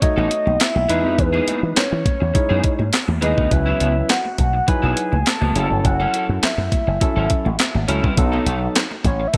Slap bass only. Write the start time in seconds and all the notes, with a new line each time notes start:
0.17 A1
0.47 B1
0.76 B1
0.89 E2
1.05 F2
1.19 E2
1.63 E3
1.77 muted slap bass stroke
1.92 E3
2.21 E2
2.50 F#2
2.79 G#2
3.08 E2
3.22 D#2
3.38 D2
3.51 C#2
3.81 C#2
4.39 B1
4.83 B1
5.13 C#2
5.41 C#2
5.55 F#1
5.71 G1
5.85 F#1
6.29 F#2
6.43 muted slap bass stroke
6.58 F#2
6.87 F#1
7.16 G#1
7.46 A1
7.75 G#1
7.88 C#2
8.04 C2
8.18 B1
8.46 B1
9.05 A1